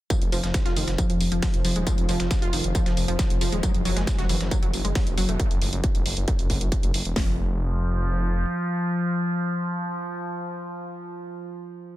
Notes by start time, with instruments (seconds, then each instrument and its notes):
0.10 synth drone F3, synth arpeggio sound F3, kick, closed hi-hat, tambourine
0.21 detuned saw bass F1, closed hi-hat
0.32 detuned saw bass F1, synth arpeggio sound F3, open hi-hat, tambourine
0.43 detuned saw bass F1, synth arpeggio sound F3, snare, closed hi-hat
0.54 kick, snare, closed hi-hat, tambourine
0.65 detuned saw bass F1, synth arpeggio sound F4, snare, closed hi-hat
0.76 detuned saw bass F1, synth arpeggio sound D#3, open hi-hat, tambourine
0.88 detuned saw bass F1, snare, closed hi-hat
0.98 synth arpeggio sound F3, kick, closed hi-hat, tambourine
1.10 detuned saw bass F1, synth arpeggio sound F3, closed hi-hat
1.20 detuned saw bass F1, open hi-hat, tambourine
1.32 detuned saw bass F1, synth arpeggio sound F3, closed hi-hat
1.42 synth arpeggio sound F3, kick, snare, closed hi-hat, open hi-hat
1.54 detuned saw bass F1, closed hi-hat
1.65 detuned saw bass F1, synth arpeggio sound F3, open hi-hat, tambourine
1.76 detuned saw bass D#1, synth arpeggio sound G#3, closed hi-hat
1.87 synth arpeggio sound F3, kick, closed hi-hat, tambourine
1.98 detuned saw bass F1, closed hi-hat
2.09 detuned saw bass F1, synth arpeggio sound F3, open hi-hat, tambourine
2.20 detuned saw bass F1, synth arpeggio sound F3, snare, closed hi-hat
2.31 kick, snare, closed hi-hat, tambourine
2.42 detuned saw bass F1, synth arpeggio sound F4, closed hi-hat
2.53 detuned saw bass F1, synth arpeggio sound D#3, open hi-hat, tambourine
2.64 detuned saw bass F1, closed hi-hat
2.75 synth arpeggio sound F3, kick, closed hi-hat, tambourine
2.86 detuned saw bass F1, synth arpeggio sound F3, snare, closed hi-hat
2.97 detuned saw bass F1, open hi-hat, tambourine
3.08 detuned saw bass F1, synth arpeggio sound F3, closed hi-hat
3.19 synth arpeggio sound F3, kick, snare, closed hi-hat, tambourine
3.30 detuned saw bass F1, closed hi-hat
3.41 detuned saw bass F1, synth arpeggio sound F3, open hi-hat, tambourine
3.52 detuned saw bass D#1, synth arpeggio sound G#3, closed hi-hat
3.63 synth arpeggio sound F#3, kick, closed hi-hat, tambourine
3.74 detuned saw bass F#1, closed hi-hat
3.85 detuned saw bass F#1, synth arpeggio sound F#3, open hi-hat, tambourine
3.96 detuned saw bass F#1, synth arpeggio sound G#3, snare, closed hi-hat
4.07 kick, snare, closed hi-hat, tambourine
4.18 detuned saw bass F#1, synth arpeggio sound F#4, snare, closed hi-hat
4.29 detuned saw bass F#1, synth arpeggio sound E3, open hi-hat, tambourine
4.41 detuned saw bass F#1, snare, closed hi-hat
4.51 synth arpeggio sound F#3, kick, closed hi-hat, tambourine
4.62 detuned saw bass F#1, synth arpeggio sound F#3, closed hi-hat
4.73 detuned saw bass F#1, open hi-hat, tambourine
4.85 detuned saw bass F#1, synth arpeggio sound G#3, closed hi-hat
4.95 synth arpeggio sound F#3, kick, snare, closed hi-hat, open hi-hat
5.07 detuned saw bass F#1, closed hi-hat
5.17 detuned saw bass F#1, synth arpeggio sound F#3, open hi-hat, tambourine
5.29 detuned saw bass E1, synth arpeggio sound A3, closed hi-hat
5.40 kick, closed hi-hat
5.51 detuned saw bass F#1, closed hi-hat
5.62 detuned saw bass F#1, open hi-hat
5.73 detuned saw bass F#1, closed hi-hat
5.84 kick, closed hi-hat
5.95 detuned saw bass F#1, closed hi-hat
6.06 detuned saw bass F#1, open hi-hat
6.17 detuned saw bass F#1, closed hi-hat
6.28 kick, closed hi-hat
6.39 detuned saw bass F#1, closed hi-hat
6.50 detuned saw bass F#1, kick, open hi-hat
6.61 detuned saw bass F#1, closed hi-hat
6.72 kick, closed hi-hat
6.83 detuned saw bass F#1, closed hi-hat
6.94 detuned saw bass F#1, open hi-hat
7.05 detuned saw bass E1, closed hi-hat
7.16 detuned saw bass F1, synth arpeggio sound F3, synth drone F3, kick, snare, open hi-hat